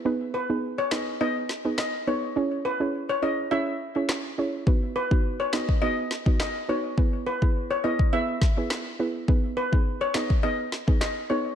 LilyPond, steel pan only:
\new Staff \with { instrumentName = "Steel pan" } { \time 4/4 \key gis \minor \tempo 4 = 104 r8 b'16 r8 cis''16 dis''16 r16 dis''8. r16 dis''16 r16 cis''16 r16 | r8 b'16 r8 cis''16 dis''16 r16 e''8. r4 r16 | r8 b'16 r8 cis''16 dis''16 r16 dis''8. r16 dis''16 r16 cis''16 r16 | r8 b'16 r8 cis''16 dis''16 r16 e''8. r4 r16 |
r8 b'16 r8 cis''16 dis''16 r16 dis''8. r16 dis''16 r16 cis''16 r16 | }